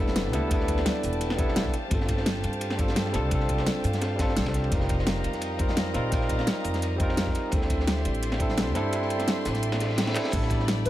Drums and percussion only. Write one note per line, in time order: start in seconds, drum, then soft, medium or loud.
0.08 snare soft
0.16 snare loud
0.16 closed hi-hat medium
0.16 ride medium
0.25 snare soft
0.33 snare soft
0.33 closed hi-hat medium
0.33 ride medium
0.51 kick loud
0.51 closed hi-hat medium
0.51 ride loud
0.60 snare soft
0.68 kick medium
0.68 closed hi-hat medium
0.68 ride medium
0.77 snare medium
0.77 snare soft
0.85 snare loud
0.85 closed hi-hat medium
0.85 ride medium
1.03 open hi-hat medium
1.03 ride medium
1.13 closed hi-hat soft
1.21 closed hi-hat medium
1.21 ride medium
1.30 snare soft
1.30 snare medium
1.39 kick loud
1.39 closed hi-hat medium
1.39 ride medium
1.48 snare soft
1.56 snare loud
1.56 closed hi-hat medium
1.56 ride medium
1.65 kick medium
1.65 snare medium
1.73 closed hi-hat medium
1.73 ride medium
1.91 kick loud
1.91 closed hi-hat medium
1.91 ride loud
2.00 snare medium
2.09 kick medium
2.09 closed hi-hat medium
2.09 ride medium
2.17 snare medium
2.26 snare loud
2.26 closed hi-hat medium
2.26 ride medium
2.36 snare soft
2.44 closed hi-hat medium
2.44 ride medium
2.53 closed hi-hat soft
2.61 closed hi-hat medium
2.61 ride medium
2.70 snare medium
2.79 kick loud
2.79 closed hi-hat medium
2.79 ride medium
2.88 snare soft
2.96 snare loud
2.96 closed hi-hat medium
2.96 ride medium
3.05 snare soft
3.14 snare soft
3.14 closed hi-hat medium
3.14 ride medium
3.31 kick loud
3.31 closed hi-hat medium
3.31 ride medium
3.40 snare soft
3.49 kick medium
3.49 closed hi-hat medium
3.49 ride medium
3.58 snare medium
3.58 snare soft
3.66 snare loud
3.66 closed hi-hat medium
3.66 ride medium
3.84 open hi-hat medium
3.84 ride medium
3.93 snare soft
3.93 closed hi-hat soft
4.02 snare loud
4.02 closed hi-hat medium
4.02 ride medium
4.19 kick loud
4.19 snare loud
4.19 closed hi-hat medium
4.19 ride medium
4.29 snare medium
4.37 snare loud
4.37 closed hi-hat medium
4.37 ride medium
4.46 kick medium
4.46 snare medium
4.46 ride medium
4.54 snare soft
4.54 closed hi-hat medium
4.64 ride medium
4.72 kick loud
4.72 closed hi-hat medium
4.72 ride medium
4.81 snare medium
4.89 kick medium
4.89 closed hi-hat medium
4.89 ride medium
4.99 snare medium
5.07 snare loud
5.07 closed hi-hat medium
5.07 ride medium
5.16 snare soft
5.24 closed hi-hat medium
5.24 ride medium
5.33 snare soft
5.33 closed hi-hat soft
5.41 closed hi-hat medium
5.41 ride medium
5.59 kick loud
5.59 closed hi-hat medium
5.59 ride medium
5.69 snare soft
5.77 snare loud
5.77 closed hi-hat medium
5.77 ride medium
5.85 snare soft
5.94 snare soft
5.94 closed hi-hat medium
5.94 ride medium
6.12 kick loud
6.12 closed hi-hat loud
6.12 ride loud
6.21 snare soft
6.29 kick medium
6.29 closed hi-hat medium
6.29 ride medium
6.39 snare soft
6.47 snare loud
6.47 closed hi-hat medium
6.47 ride loud
6.64 open hi-hat medium
6.64 ride medium
6.74 snare soft
6.74 closed hi-hat soft
6.82 closed hi-hat medium
6.82 ride medium
7.00 kick loud
7.00 closed hi-hat medium
7.00 ride medium
7.09 snare soft
7.17 snare loud
7.17 closed hi-hat medium
7.17 ride medium
7.27 kick medium
7.27 snare medium
7.35 closed hi-hat medium
7.35 ride medium
7.52 kick loud
7.52 closed hi-hat medium
7.52 ride medium
7.62 snare medium
7.70 kick medium
7.70 closed hi-hat medium
7.70 ride medium
7.80 snare medium
7.87 snare loud
7.87 closed hi-hat loud
7.87 ride medium
7.97 snare soft
8.05 closed hi-hat medium
8.05 ride medium
8.14 closed hi-hat soft
8.23 closed hi-hat medium
8.23 ride medium
8.32 snare medium
8.39 kick loud
8.39 closed hi-hat medium
8.39 ride medium
8.49 snare soft
8.58 snare loud
8.58 closed hi-hat loud
8.58 ride medium
8.67 snare soft
8.75 snare soft
8.75 closed hi-hat medium
8.75 ride medium
8.93 closed hi-hat medium
8.93 ride medium
9.02 snare soft
9.10 closed hi-hat medium
9.10 ride medium
9.19 snare medium
9.19 snare soft
9.19 closed hi-hat soft
9.28 snare loud
9.28 closed hi-hat loud
9.28 ride medium
9.45 snare loud
9.45 open hi-hat medium
9.45 ride medium
9.55 snare soft
9.55 closed hi-hat soft
9.62 closed hi-hat loud
9.62 ride medium
9.72 snare loud
9.72 snare medium
9.72 ride medium
9.80 snare loud
9.80 closed hi-hat medium
9.80 ride medium
9.90 snare medium
9.98 snare loud
9.98 closed hi-hat loud
9.98 ride medium
10.07 snare loud
10.07 snare medium
10.07 ride medium
10.16 snare loud
10.16 clap medium
10.16 closed hi-hat medium
10.16 ride medium
10.25 snare loud
10.25 ride medium
10.33 kick loud
10.33 closed hi-hat loud
10.33 crash medium
10.33 ride medium
10.42 snare medium
10.50 kick medium
10.50 closed hi-hat medium
10.50 ride medium
10.60 snare medium
10.68 snare loud
10.68 closed hi-hat loud
10.68 ride medium
10.77 snare soft
10.85 closed hi-hat medium
10.85 ride medium